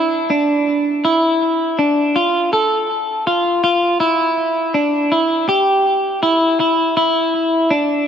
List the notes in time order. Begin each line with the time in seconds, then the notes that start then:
Already playing: E4
0.30 D4
1.05 E4
1.79 D4
2.16 F4
2.53 A4
3.27 F4
3.64 F4
4.00 E4
4.74 D4
5.12 E4
5.49 G4
6.23 E4
6.60 E4
6.97 E4
7.71 D4